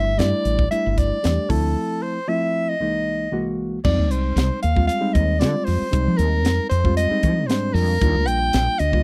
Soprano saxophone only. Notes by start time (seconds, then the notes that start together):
Already playing: E5
0.18 D5
0.71 E5
0.91 E5
0.98 D5
1.50 A4
2.02 C5
2.28 E5
2.69 D#5
3.84 D5
4.11 C5
4.62 F5
4.87 F5
5.13 D#5
5.39 D5
5.64 C5
6.17 A#4
6.69 C5
6.97 D#5
7.47 C5
7.73 A#4
8.27 G5
8.79 D#5